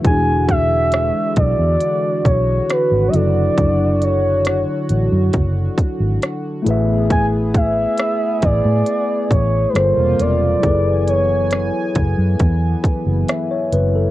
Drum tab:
HH |xxxxxxxx|xxxxxxxx|xxxxxxxx|xxxxxxxx|
SD |--r---r-|--r---r-|--r---r-|--r---r-|
BD |oo-o-o--|o---oo--|oo-o-o--|o--ooo--|